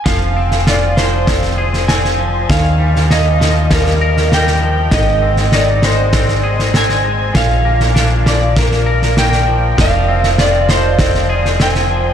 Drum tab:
SD |o--oo-o-oo-ooo--|o--oo-o-oo-ooo--|o--oo-o-oo-ooo--|o--oo-o-oo-ooo--|
BD |o-------o-------|o-------o-------|o-------o-------|o-------o-------|

SD |o--oo-o-oo-ooo--|
BD |o-------o-------|